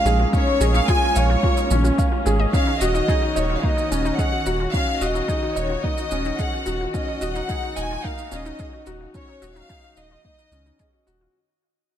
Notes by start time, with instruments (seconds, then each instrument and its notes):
Already playing: string section G#3 A#3 C#4, felt piano C#4 F4 G#4 F5, violin section F5
0.05 sub bass A#1, synth arpeggio sound D#4, felt piano G#4, shaker
0.20 synth arpeggio sound F4
0.33 felt piano C#4, synth arpeggio sound D#4, violin section C#5, kick, shaker
0.47 synth arpeggio sound D#4
0.60 sub bass A#1, felt piano G#4, synth arpeggio sound D#5, shaker
0.74 synth arpeggio sound D#4, violin section F5, shaker
0.88 felt piano F4, synth arpeggio sound G#4, violin section G#5, kick, shaker
1.03 synth arpeggio sound F4
1.16 sub bass A#1, synth arpeggio sound D#4, violin section C#5, felt piano F5, shaker
1.30 synth arpeggio sound F4
1.43 synth arpeggio sound A#3, felt piano F4, kick
1.57 synth arpeggio sound D#4, shaker
1.70 sub bass A#1, synth arpeggio sound D#3, felt piano C#4, shaker
1.84 synth arpeggio sound F4, shaker
1.98 synth arpeggio sound C#4, felt piano F5, kick, shaker
2.12 synth arpeggio sound F4
2.26 sub bass G#1, synth arpeggio sound D#4, felt piano G#4, shaker
2.39 synth arpeggio sound D#5
2.53 string section D#3 F#4, felt piano C#4, synth arpeggio sound D#4, violin section F5, kick, shaker
2.67 synth arpeggio sound D#4
2.80 sub bass D#1, felt piano F#4, synth arpeggio sound D#5, violin section D#5, shaker
2.94 synth arpeggio sound D#4, shaker
3.08 felt piano D#4, synth arpeggio sound G#4, kick, shaker
3.22 synth arpeggio sound F#4
3.36 sub bass D#1, synth arpeggio sound D#4, violin section C#5, felt piano D#5, shaker
3.50 synth arpeggio sound F4
3.57 violin section F5
3.63 synth arpeggio sound A#3, felt piano D#4, violin section D#5, kick
3.77 synth arpeggio sound D#4, shaker
3.91 sub bass D#1, synth arpeggio sound C#4, felt piano C#4, shaker
4.05 synth arpeggio sound D#4, shaker
4.18 synth arpeggio sound G#4, felt piano D#5, violin section F#5, kick, shaker
4.32 synth arpeggio sound F#4
4.46 sub bass D#1, synth arpeggio sound D#4, felt piano F#4, shaker
4.60 synth arpeggio sound F4
4.74 felt piano C#4, synth arpeggio sound D#4, violin section F5, kick, shaker
4.88 synth arpeggio sound D#4
5.01 sub bass D#1, felt piano F#4, violin section D#5, synth arpeggio sound D#5, shaker
5.15 synth arpeggio sound D#4, shaker
5.28 felt piano D#4, synth arpeggio sound G#4, kick, shaker
5.43 synth arpeggio sound F#4
5.56 sub bass D#1, synth arpeggio sound D#4, violin section C#5, felt piano D#5, shaker
5.70 synth arpeggio sound F4
5.84 synth arpeggio sound A#3, felt piano D#4, violin section D#5, kick
5.98 synth arpeggio sound D#4, shaker
6.11 sub bass D#1, felt piano C#4, synth arpeggio sound C#4, shaker
6.25 synth arpeggio sound D#4, shaker
6.39 synth arpeggio sound G#4, felt piano D#5, violin section F#5, kick, shaker
6.53 synth arpeggio sound F#4
6.66 sub bass D#1, synth arpeggio sound D#4, felt piano F#4, shaker
6.81 synth arpeggio sound F4
6.94 felt piano C#4, synth arpeggio sound D#4, string section D#4, violin section D#5, kick, shaker
7.08 synth arpeggio sound D#4
7.21 sub bass D#1, felt piano F#4, synth arpeggio sound D#5, shaker
7.35 synth arpeggio sound D#4, violin section F#5, shaker
7.48 felt piano D#4, synth arpeggio sound G#4, kick, shaker
7.63 synth arpeggio sound F#4
7.76 sub bass D#1, synth arpeggio sound D#4, felt piano D#5, violin section G#5, shaker
7.91 synth arpeggio sound F4
8.04 synth arpeggio sound A#3, felt piano D#4, violin section F5, kick
8.18 synth arpeggio sound D#4, shaker
8.31 sub bass D#1, felt piano C#4, synth arpeggio sound C#4, violin section D#5, shaker
8.46 synth arpeggio sound D#4, shaker
8.59 synth arpeggio sound G#4, felt piano D#5, kick, shaker
8.73 synth arpeggio sound F#4
8.86 sub bass D#1, synth arpeggio sound D#4, felt piano F#4, shaker
9.01 synth arpeggio sound F4
9.14 felt piano C#4, synth arpeggio sound D#4, violin section C#5, kick, shaker
9.28 synth arpeggio sound D#4
9.42 sub bass D#1, felt piano F#4, synth arpeggio sound D#5, shaker
9.56 synth arpeggio sound D#4, violin section F5, shaker
9.69 felt piano D#4, synth arpeggio sound G#4, kick, shaker
9.84 synth arpeggio sound F#4
9.96 sub bass D#1, synth arpeggio sound D#4, felt piano D#5, violin section D#5, shaker
10.11 synth arpeggio sound F4
10.25 synth arpeggio sound A#3, felt piano D#4, kick
10.39 synth arpeggio sound D#4, shaker
10.51 sub bass C#2, synth arpeggio sound C#4, felt piano C#4, shaker
10.66 synth arpeggio sound D#4, shaker
10.79 synth arpeggio sound G#4, felt piano D#5, kick, shaker
10.93 synth arpeggio sound F#4
11.07 sub bass D#1, synth arpeggio sound D#4, felt piano F#4, shaker
11.21 synth arpeggio sound F4